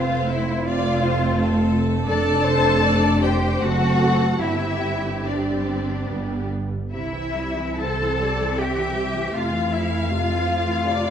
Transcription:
Already playing: F1 A3 C4 F4 C5 F5
0.30 E4 E5
0.65 A3 C4 F4 D5 F5
1.01 C5
1.38 A4
2.08 F1 A3 D4 A4 D5 A5
2.45 C5
2.85 D5
3.23 G4 C5 G5
3.61 F#1 A3 C4 F#4 A4 F#5
4.41 G1 G3 C4 E4 G4 E5
5.26 G3 C4 D4 D5
6.08 G1 G3 B3
6.93 C2 C3 C4 E4 E5
7.14 E3
7.36 G3
7.58 E3
7.79 C3 A4 C5 A5
8.01 E3
8.20 G3 D5
8.39 E3
8.58 C3 G4 E5 G5
8.78 E3
8.97 G3
9.16 E3
9.34 F2 C3 A3 F4 F5
9.54 E3
9.73 F3 E4 E5
9.92 E3
10.11 C3 F4 F5
10.29 E3
10.48 F3
10.67 E3
10.87 C3 D5
11.05 E3

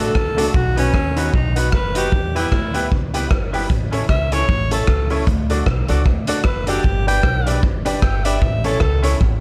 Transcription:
Already playing: A3 D4
0.00 D4 F#4 A4 D5
0.15 C#2, kick, cross-stick
0.37 A3 D4 F#4 A4 D5, closed hi-hat
0.54 B1 F#4, kick
0.76 B3 C#4 D#4 F#4 B4, closed hi-hat
0.94 D#2, kick, cross-stick
1.16 B3 D#4 F#4 B4, closed hi-hat
1.34 B1 D#4, kick
1.55 B3 D#4 F#4 B4, closed hi-hat
1.72 F#1 B4, kick, cross-stick
1.94 B3 D#4 F#4 G4 B4, closed hi-hat
2.12 E2, kick
2.34 B3 E4 G4 B4, closed hi-hat
2.52 D2, kick, cross-stick
2.74 B3 E4 G4 B4, closed hi-hat
2.92 C#2, kick
3.14 B3 E4 G4 B4, closed hi-hat
3.31 G1, kick, cross-stick
3.52 B3 E4 G4 B4, open hi-hat
3.70 A1, kick, hi-hat pedal
3.91 C#4 E4 A4 C#5, closed hi-hat
4.09 C#2 E5, kick, cross-stick
4.32 C#4 E4 A4 C#5, closed hi-hat
4.49 A1, kick
4.71 C#4 E4 A4 C#5, closed hi-hat
4.87 C#2, kick, cross-stick
5.10 C#4 E4 A4 C#5, open hi-hat
5.27 D2, kick, hi-hat pedal
5.49 D4 F#4 A4 D5, closed hi-hat
5.66 B1, kick, cross-stick
5.88 C#2 D4 F#4 A4 D5, closed hi-hat
6.06 D2, kick
6.27 D4 F#4 A4 D5, closed hi-hat
6.44 F#1 B4, kick, cross-stick
6.67 D4 F#4 G4 A4 D5, closed hi-hat
6.84 G1, kick
7.06 D4 G4 B4 D5 G5, closed hi-hat
7.23 B1, kick, cross-stick
7.46 D4 G4 B4 D5, closed hi-hat
7.63 G1, kick
7.85 D4 G4 B4 D5, closed hi-hat
8.02 G1 G5, kick, cross-stick
8.25 D4 G4 B4 D5 E5, closed hi-hat
8.41 A1, kick
8.64 C#4 E4 A4 C#5, closed hi-hat
8.80 C#2, kick, cross-stick
9.02 C#4 E4 A4 C#5, closed hi-hat
9.21 A1, kick

